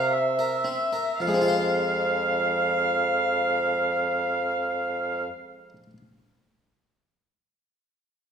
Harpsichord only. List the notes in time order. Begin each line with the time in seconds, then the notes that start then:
Already playing: C3 A#4
0.39 A#4
0.64 C4
0.93 A#4
1.20 F3
1.27 G#3
1.34 C4
1.41 F4
1.48 C5